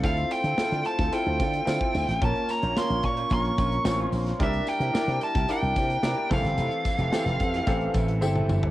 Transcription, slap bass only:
X:1
M:4/4
L:1/16
Q:1/4=110
K:F
V:1 name="Slap bass" clef=bass
D,,2 z D, z D, z D,, z D,, D,2 D, z D,, A,,, | B,,, z2 B,,, z B,,, B,,2 B,,,2 B,,,2 A,,,2 B,,,2 | C,,2 z C, z C, z C,, z C,, C,2 C, z F,,, G,,, | F,,, z2 F,,, z F,,, F,,2 A,,,2 A,,,2 G,,,2 G,,,2 |]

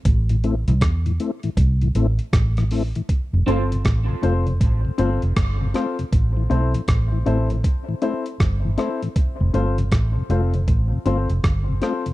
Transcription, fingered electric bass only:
X:1
M:4/4
L:1/16
Q:"Swing 16ths" 1/4=79
K:Flyd
V:1 name="Fingered electric bass" clef=bass
A,,,3 C,, E,,2 z2 C,,2 A,,, z A,,,3 z | z F,,, G,,,2 A,,, z F,,,2 A,,, z G,,, F,,, G,,,2 z2 | A,,,2 B,,, z A,,,2 A,,,2 z4 G,,,2 z2 | z F,,, G,,,2 A,,, z F,,,2 A,,, z G,,, F,,, G,,,2 z2 |]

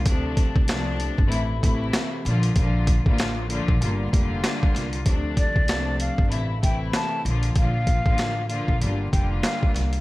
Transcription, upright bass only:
X:1
M:4/4
L:1/16
Q:"Swing 16ths" 1/4=96
K:Dm
V:1 name="Upright bass" clef=bass
D,,3 C,,4 G,,, A,,,2 A,,,2 z2 B,,,2 | B,,,3 A,,,4 B,,, G,,,2 F,,,2 z2 C,,2 | D,,3 C,,4 G,,, A,,,2 A,,,2 z2 B,,,2 | B,,,3 A,,,4 B,,, G,,,2 F,,,2 z2 C,,2 |]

